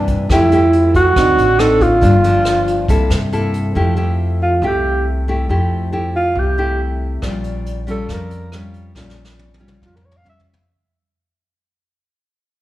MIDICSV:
0, 0, Header, 1, 5, 480
1, 0, Start_track
1, 0, Key_signature, -1, "major"
1, 0, Tempo, 432900
1, 323, Time_signature, 4, 2, 24, 8
1, 13989, End_track
2, 0, Start_track
2, 0, Title_t, "Alto saxophone"
2, 0, Program_c, 0, 65
2, 357, Note_on_c, 0, 64, 86
2, 1016, Note_off_c, 0, 64, 0
2, 1063, Note_on_c, 0, 66, 91
2, 1771, Note_on_c, 0, 69, 104
2, 1788, Note_off_c, 0, 66, 0
2, 2021, Note_on_c, 0, 65, 88
2, 2038, Note_off_c, 0, 69, 0
2, 3212, Note_off_c, 0, 65, 0
2, 4907, Note_on_c, 0, 65, 72
2, 5175, Note_on_c, 0, 67, 83
2, 5191, Note_off_c, 0, 65, 0
2, 5629, Note_off_c, 0, 67, 0
2, 6830, Note_on_c, 0, 65, 85
2, 7084, Note_on_c, 0, 67, 74
2, 7101, Note_off_c, 0, 65, 0
2, 7544, Note_off_c, 0, 67, 0
2, 8764, Note_on_c, 0, 69, 82
2, 9012, Note_on_c, 0, 70, 73
2, 9029, Note_off_c, 0, 69, 0
2, 9468, Note_off_c, 0, 70, 0
2, 10933, Note_on_c, 0, 65, 71
2, 11047, Note_on_c, 0, 70, 65
2, 11063, Note_off_c, 0, 65, 0
2, 11148, Note_on_c, 0, 73, 72
2, 11164, Note_off_c, 0, 70, 0
2, 11277, Note_on_c, 0, 77, 89
2, 11293, Note_off_c, 0, 73, 0
2, 11380, Note_off_c, 0, 77, 0
2, 11415, Note_on_c, 0, 76, 78
2, 11543, Note_off_c, 0, 76, 0
2, 13989, End_track
3, 0, Start_track
3, 0, Title_t, "Nylon-string guitar"
3, 0, Program_c, 1, 24
3, 0, Note_on_c, 1, 48, 51
3, 0, Note_on_c, 1, 52, 62
3, 0, Note_on_c, 1, 58, 58
3, 0, Note_on_c, 1, 62, 67
3, 291, Note_off_c, 1, 52, 0
3, 296, Note_off_c, 1, 58, 0
3, 298, Note_off_c, 1, 62, 0
3, 308, Note_off_c, 1, 48, 0
3, 337, Note_on_c, 1, 53, 55
3, 338, Note_on_c, 1, 57, 60
3, 345, Note_on_c, 1, 64, 53
3, 351, Note_on_c, 1, 67, 61
3, 532, Note_off_c, 1, 57, 0
3, 533, Note_off_c, 1, 64, 0
3, 539, Note_off_c, 1, 67, 0
3, 575, Note_on_c, 1, 57, 56
3, 586, Note_on_c, 1, 64, 53
3, 590, Note_on_c, 1, 67, 59
3, 1251, Note_off_c, 1, 57, 0
3, 1257, Note_off_c, 1, 64, 0
3, 1257, Note_off_c, 1, 67, 0
3, 1267, Note_off_c, 1, 53, 0
3, 1292, Note_on_c, 1, 50, 52
3, 1299, Note_on_c, 1, 60, 52
3, 1301, Note_on_c, 1, 63, 52
3, 1301, Note_on_c, 1, 66, 54
3, 1599, Note_off_c, 1, 60, 0
3, 1599, Note_off_c, 1, 63, 0
3, 1601, Note_off_c, 1, 66, 0
3, 1769, Note_on_c, 1, 60, 59
3, 1775, Note_on_c, 1, 63, 50
3, 1778, Note_on_c, 1, 66, 58
3, 2090, Note_off_c, 1, 60, 0
3, 2090, Note_off_c, 1, 66, 0
3, 2091, Note_off_c, 1, 63, 0
3, 2225, Note_off_c, 1, 50, 0
3, 2233, Note_on_c, 1, 53, 57
3, 2237, Note_on_c, 1, 43, 55
3, 2243, Note_on_c, 1, 58, 56
3, 2245, Note_on_c, 1, 62, 54
3, 2379, Note_off_c, 1, 53, 0
3, 2384, Note_off_c, 1, 58, 0
3, 2384, Note_off_c, 1, 62, 0
3, 2487, Note_on_c, 1, 53, 65
3, 2490, Note_on_c, 1, 58, 54
3, 2492, Note_on_c, 1, 62, 63
3, 3167, Note_off_c, 1, 58, 0
3, 3168, Note_off_c, 1, 53, 0
3, 3170, Note_off_c, 1, 62, 0
3, 3177, Note_off_c, 1, 43, 0
3, 3203, Note_on_c, 1, 48, 49
3, 3207, Note_on_c, 1, 58, 50
3, 3212, Note_on_c, 1, 64, 54
3, 3218, Note_on_c, 1, 69, 61
3, 3513, Note_off_c, 1, 58, 0
3, 3517, Note_off_c, 1, 64, 0
3, 3519, Note_off_c, 1, 69, 0
3, 3688, Note_on_c, 1, 58, 55
3, 3695, Note_on_c, 1, 64, 52
3, 3696, Note_on_c, 1, 69, 61
3, 4140, Note_off_c, 1, 48, 0
3, 4147, Note_off_c, 1, 58, 0
3, 4149, Note_off_c, 1, 69, 0
3, 4150, Note_off_c, 1, 64, 0
3, 4160, Note_on_c, 1, 57, 46
3, 4169, Note_on_c, 1, 53, 52
3, 4169, Note_on_c, 1, 64, 54
3, 4175, Note_on_c, 1, 67, 62
3, 4363, Note_off_c, 1, 57, 0
3, 4367, Note_off_c, 1, 64, 0
3, 4369, Note_off_c, 1, 67, 0
3, 4398, Note_on_c, 1, 57, 51
3, 4402, Note_on_c, 1, 64, 53
3, 4408, Note_on_c, 1, 67, 56
3, 5082, Note_off_c, 1, 57, 0
3, 5083, Note_off_c, 1, 64, 0
3, 5087, Note_off_c, 1, 67, 0
3, 5104, Note_off_c, 1, 53, 0
3, 5130, Note_on_c, 1, 48, 48
3, 5133, Note_on_c, 1, 57, 52
3, 5137, Note_on_c, 1, 64, 52
3, 5144, Note_on_c, 1, 67, 61
3, 5809, Note_off_c, 1, 57, 0
3, 5812, Note_off_c, 1, 64, 0
3, 5814, Note_off_c, 1, 67, 0
3, 5855, Note_on_c, 1, 57, 58
3, 5864, Note_on_c, 1, 64, 59
3, 5868, Note_on_c, 1, 67, 60
3, 6051, Note_off_c, 1, 57, 0
3, 6056, Note_off_c, 1, 64, 0
3, 6056, Note_off_c, 1, 67, 0
3, 6063, Note_off_c, 1, 48, 0
3, 6094, Note_on_c, 1, 53, 53
3, 6100, Note_on_c, 1, 57, 51
3, 6102, Note_on_c, 1, 64, 49
3, 6105, Note_on_c, 1, 67, 52
3, 6532, Note_off_c, 1, 57, 0
3, 6534, Note_off_c, 1, 64, 0
3, 6535, Note_off_c, 1, 67, 0
3, 6570, Note_on_c, 1, 57, 46
3, 6571, Note_on_c, 1, 64, 52
3, 6577, Note_on_c, 1, 67, 60
3, 7026, Note_off_c, 1, 53, 0
3, 7043, Note_off_c, 1, 64, 0
3, 7044, Note_off_c, 1, 57, 0
3, 7047, Note_on_c, 1, 48, 50
3, 7048, Note_off_c, 1, 67, 0
3, 7296, Note_on_c, 1, 57, 55
3, 7302, Note_on_c, 1, 64, 58
3, 7306, Note_on_c, 1, 67, 65
3, 7981, Note_off_c, 1, 48, 0
3, 7991, Note_off_c, 1, 57, 0
3, 7994, Note_off_c, 1, 64, 0
3, 7995, Note_off_c, 1, 67, 0
3, 8004, Note_on_c, 1, 46, 53
3, 8011, Note_on_c, 1, 55, 53
3, 8017, Note_on_c, 1, 61, 51
3, 8020, Note_on_c, 1, 65, 60
3, 8690, Note_off_c, 1, 55, 0
3, 8691, Note_off_c, 1, 61, 0
3, 8694, Note_off_c, 1, 65, 0
3, 8724, Note_on_c, 1, 55, 52
3, 8736, Note_on_c, 1, 61, 58
3, 8742, Note_on_c, 1, 65, 59
3, 8940, Note_off_c, 1, 46, 0
3, 8964, Note_on_c, 1, 53, 46
3, 9406, Note_off_c, 1, 55, 0
3, 9412, Note_off_c, 1, 61, 0
3, 9414, Note_off_c, 1, 65, 0
3, 9462, Note_on_c, 1, 55, 51
3, 9474, Note_on_c, 1, 61, 57
3, 9480, Note_on_c, 1, 65, 55
3, 9895, Note_off_c, 1, 55, 0
3, 9900, Note_off_c, 1, 53, 0
3, 9901, Note_off_c, 1, 61, 0
3, 9903, Note_off_c, 1, 65, 0
3, 9934, Note_on_c, 1, 46, 52
3, 9938, Note_on_c, 1, 61, 52
3, 9939, Note_on_c, 1, 55, 48
3, 9941, Note_on_c, 1, 65, 52
3, 10611, Note_off_c, 1, 61, 0
3, 10613, Note_off_c, 1, 55, 0
3, 10614, Note_off_c, 1, 65, 0
3, 10641, Note_on_c, 1, 55, 54
3, 10646, Note_on_c, 1, 61, 51
3, 10652, Note_on_c, 1, 65, 56
3, 10866, Note_off_c, 1, 46, 0
3, 10886, Note_on_c, 1, 53, 49
3, 11324, Note_off_c, 1, 55, 0
3, 11327, Note_off_c, 1, 61, 0
3, 11330, Note_off_c, 1, 65, 0
3, 11352, Note_on_c, 1, 55, 49
3, 11359, Note_on_c, 1, 61, 53
3, 11364, Note_on_c, 1, 65, 53
3, 11667, Note_off_c, 1, 55, 0
3, 11669, Note_off_c, 1, 61, 0
3, 11673, Note_off_c, 1, 65, 0
3, 11821, Note_off_c, 1, 53, 0
3, 13989, End_track
4, 0, Start_track
4, 0, Title_t, "Upright bass"
4, 0, Program_c, 2, 32
4, 0, Note_on_c, 2, 43, 81
4, 286, Note_off_c, 2, 43, 0
4, 324, Note_on_c, 2, 41, 88
4, 1240, Note_off_c, 2, 41, 0
4, 1290, Note_on_c, 2, 38, 81
4, 1510, Note_off_c, 2, 38, 0
4, 1521, Note_on_c, 2, 33, 82
4, 2198, Note_off_c, 2, 33, 0
4, 2243, Note_on_c, 2, 31, 81
4, 3159, Note_off_c, 2, 31, 0
4, 3200, Note_on_c, 2, 36, 80
4, 3425, Note_off_c, 2, 36, 0
4, 3437, Note_on_c, 2, 43, 85
4, 4116, Note_off_c, 2, 43, 0
4, 4163, Note_on_c, 2, 41, 84
4, 5079, Note_off_c, 2, 41, 0
4, 5119, Note_on_c, 2, 36, 89
4, 6037, Note_off_c, 2, 36, 0
4, 6089, Note_on_c, 2, 41, 80
4, 7002, Note_off_c, 2, 41, 0
4, 7044, Note_on_c, 2, 36, 89
4, 7960, Note_off_c, 2, 36, 0
4, 8012, Note_on_c, 2, 34, 81
4, 8924, Note_off_c, 2, 34, 0
4, 8973, Note_on_c, 2, 41, 90
4, 9884, Note_off_c, 2, 41, 0
4, 9922, Note_on_c, 2, 34, 84
4, 10839, Note_off_c, 2, 34, 0
4, 10893, Note_on_c, 2, 41, 82
4, 11804, Note_off_c, 2, 41, 0
4, 13989, End_track
5, 0, Start_track
5, 0, Title_t, "Drums"
5, 83, Note_on_c, 9, 42, 38
5, 88, Note_on_c, 9, 36, 48
5, 193, Note_off_c, 9, 42, 0
5, 199, Note_off_c, 9, 36, 0
5, 329, Note_on_c, 9, 36, 54
5, 331, Note_on_c, 9, 37, 52
5, 331, Note_on_c, 9, 42, 52
5, 439, Note_off_c, 9, 36, 0
5, 442, Note_off_c, 9, 37, 0
5, 442, Note_off_c, 9, 42, 0
5, 571, Note_on_c, 9, 42, 38
5, 682, Note_off_c, 9, 42, 0
5, 809, Note_on_c, 9, 42, 38
5, 920, Note_off_c, 9, 42, 0
5, 1047, Note_on_c, 9, 42, 39
5, 1048, Note_on_c, 9, 36, 52
5, 1158, Note_off_c, 9, 42, 0
5, 1159, Note_off_c, 9, 36, 0
5, 1288, Note_on_c, 9, 36, 55
5, 1289, Note_on_c, 9, 37, 54
5, 1289, Note_on_c, 9, 42, 55
5, 1399, Note_off_c, 9, 36, 0
5, 1400, Note_off_c, 9, 37, 0
5, 1400, Note_off_c, 9, 42, 0
5, 1532, Note_on_c, 9, 42, 39
5, 1643, Note_off_c, 9, 42, 0
5, 1764, Note_on_c, 9, 37, 61
5, 1764, Note_on_c, 9, 42, 40
5, 1875, Note_off_c, 9, 37, 0
5, 1875, Note_off_c, 9, 42, 0
5, 2004, Note_on_c, 9, 36, 46
5, 2005, Note_on_c, 9, 42, 37
5, 2115, Note_off_c, 9, 36, 0
5, 2116, Note_off_c, 9, 42, 0
5, 2241, Note_on_c, 9, 36, 54
5, 2245, Note_on_c, 9, 42, 55
5, 2352, Note_off_c, 9, 36, 0
5, 2356, Note_off_c, 9, 42, 0
5, 2483, Note_on_c, 9, 42, 46
5, 2594, Note_off_c, 9, 42, 0
5, 2718, Note_on_c, 9, 37, 60
5, 2718, Note_on_c, 9, 42, 45
5, 2828, Note_off_c, 9, 37, 0
5, 2828, Note_off_c, 9, 42, 0
5, 2966, Note_on_c, 9, 42, 43
5, 3077, Note_off_c, 9, 42, 0
5, 3198, Note_on_c, 9, 36, 57
5, 3202, Note_on_c, 9, 42, 52
5, 3309, Note_off_c, 9, 36, 0
5, 3313, Note_off_c, 9, 42, 0
5, 3442, Note_on_c, 9, 37, 54
5, 3442, Note_on_c, 9, 42, 44
5, 3553, Note_off_c, 9, 37, 0
5, 3553, Note_off_c, 9, 42, 0
5, 3688, Note_on_c, 9, 42, 42
5, 3799, Note_off_c, 9, 42, 0
5, 3923, Note_on_c, 9, 42, 35
5, 4034, Note_off_c, 9, 42, 0
5, 8008, Note_on_c, 9, 37, 58
5, 8008, Note_on_c, 9, 42, 52
5, 8012, Note_on_c, 9, 36, 52
5, 8119, Note_off_c, 9, 37, 0
5, 8119, Note_off_c, 9, 42, 0
5, 8123, Note_off_c, 9, 36, 0
5, 8248, Note_on_c, 9, 42, 38
5, 8359, Note_off_c, 9, 42, 0
5, 8494, Note_on_c, 9, 42, 38
5, 8605, Note_off_c, 9, 42, 0
5, 8731, Note_on_c, 9, 42, 36
5, 8842, Note_off_c, 9, 42, 0
5, 8970, Note_on_c, 9, 36, 54
5, 8970, Note_on_c, 9, 37, 50
5, 8970, Note_on_c, 9, 42, 50
5, 9081, Note_off_c, 9, 36, 0
5, 9081, Note_off_c, 9, 37, 0
5, 9081, Note_off_c, 9, 42, 0
5, 9207, Note_on_c, 9, 42, 38
5, 9318, Note_off_c, 9, 42, 0
5, 9448, Note_on_c, 9, 37, 55
5, 9448, Note_on_c, 9, 42, 42
5, 9559, Note_off_c, 9, 37, 0
5, 9559, Note_off_c, 9, 42, 0
5, 9688, Note_on_c, 9, 42, 35
5, 9799, Note_off_c, 9, 42, 0
5, 9927, Note_on_c, 9, 36, 52
5, 9929, Note_on_c, 9, 38, 32
5, 10037, Note_off_c, 9, 36, 0
5, 10040, Note_off_c, 9, 38, 0
5, 10086, Note_on_c, 9, 38, 30
5, 10196, Note_off_c, 9, 38, 0
5, 10251, Note_on_c, 9, 38, 37
5, 10362, Note_off_c, 9, 38, 0
5, 10412, Note_on_c, 9, 48, 39
5, 10523, Note_off_c, 9, 48, 0
5, 10577, Note_on_c, 9, 48, 41
5, 10687, Note_off_c, 9, 48, 0
5, 10732, Note_on_c, 9, 47, 39
5, 10843, Note_off_c, 9, 47, 0
5, 10887, Note_on_c, 9, 36, 51
5, 10896, Note_on_c, 9, 47, 43
5, 10998, Note_off_c, 9, 36, 0
5, 11007, Note_off_c, 9, 47, 0
5, 11050, Note_on_c, 9, 45, 41
5, 11161, Note_off_c, 9, 45, 0
5, 11214, Note_on_c, 9, 45, 50
5, 11325, Note_off_c, 9, 45, 0
5, 11370, Note_on_c, 9, 43, 47
5, 11481, Note_off_c, 9, 43, 0
5, 11526, Note_on_c, 9, 43, 51
5, 11636, Note_off_c, 9, 43, 0
5, 11680, Note_on_c, 9, 43, 45
5, 11791, Note_off_c, 9, 43, 0
5, 13989, End_track
0, 0, End_of_file